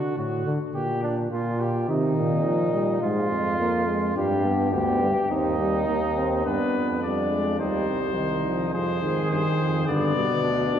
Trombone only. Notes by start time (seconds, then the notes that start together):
Already playing: D3
0.17 A2
0.46 D3
0.75 A#2
1.31 A#2
1.88 D#3
2.45 F3
2.73 G3
3.01 G#3
3.59 A#3
3.88 G#3
4.16 G3
4.45 B3
4.73 B3
5.30 C4
5.59 G3
5.87 A#3
6.16 C4
6.45 B3
7.02 G3
7.31 G#3
7.59 G3
8.17 D#3
8.45 F3
8.74 F3
9.03 D#3
9.88 D3
10.16 B2